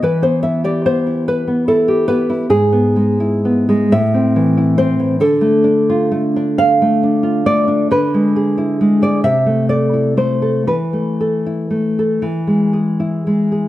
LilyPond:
\new Staff \with { instrumentName = "Nylon-string guitar" } { \time 6/8 \key e \minor \tempo 4. = 45 << { b'16 c''16 e''16 d''16 c''8 b'8 a'8 b'8 | \key e \phrygian gis'4. e''4 c''8 | a'4. f''4 d''8 | b'4~ b'16 d''16 e''8 d''8 c''8 |
b'2~ b'8 r8 | } \\ { e16 b16 e'16 g'16 b16 e'8 b16 e'16 g'16 b16 e'16 | gis,16 b16 gis16 e'16 b16 gis16 a,16 c'16 e16 e'16 c'16 e16 | d16 a16 d'16 f'16 a16 d'8 a16 d'16 f'16 a16 d'16 | d16 gis16 gis'16 e'16 gis16 gis'16 c16 a16 a'16 e'16 a16 a'16 |
e16 a16 a'16 e'16 a16 a'16 e16 gis16 gis'16 e'16 gis16 gis'16 | } >> }